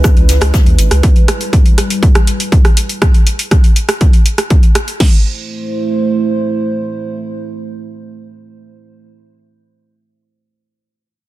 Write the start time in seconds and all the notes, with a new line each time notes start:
Already playing: G#3 C#4 E4 G#4 B4 D#5
0.04 kick, cross-stick, closed hi-hat, shaker
0.16 C#2, closed hi-hat
0.29 C#2, snare, closed hi-hat, shaker
0.41 C#2, cross-stick, snare, closed hi-hat
0.54 kick, snare, closed hi-hat, shaker
0.66 D#2, closed hi-hat
0.79 G#1, closed hi-hat, shaker
0.91 C#2, cross-stick, closed hi-hat
1.03 G3, kick, closed hi-hat
1.16 closed hi-hat
1.28 cross-stick, closed hi-hat
1.41 closed hi-hat
1.53 kick, closed hi-hat
1.66 closed hi-hat
1.78 cross-stick, closed hi-hat
1.90 closed hi-hat
2.03 kick, closed hi-hat
2.15 cross-stick, closed hi-hat
2.27 closed hi-hat
2.40 closed hi-hat
2.52 kick, closed hi-hat
2.65 cross-stick, closed hi-hat
2.77 closed hi-hat
2.89 closed hi-hat
3.02 kick, cross-stick, closed hi-hat
3.14 closed hi-hat
3.27 closed hi-hat
3.39 closed hi-hat
3.51 kick, cross-stick, closed hi-hat
3.64 closed hi-hat
3.76 closed hi-hat
3.89 cross-stick, closed hi-hat
4.01 kick, closed hi-hat
4.13 closed hi-hat
4.26 closed hi-hat
4.38 cross-stick, closed hi-hat
4.50 kick, closed hi-hat
4.63 closed hi-hat
4.75 cross-stick, closed hi-hat
4.88 closed hi-hat
5.00 A3 E4 C5, kick, snare, crash